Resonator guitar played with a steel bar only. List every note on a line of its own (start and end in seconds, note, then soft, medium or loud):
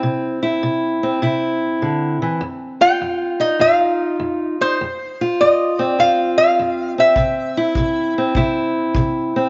2.81 3.42 G5 loud
3.40 3.61 D#5 medium
3.61 4.62 F5 medium
4.61 5.42 C5 medium
5.41 5.80 D#5 medium
5.80 5.95 D5 medium
6.00 6.37 F5 medium
6.38 6.93 F5 medium
7.00 8.13 E5 medium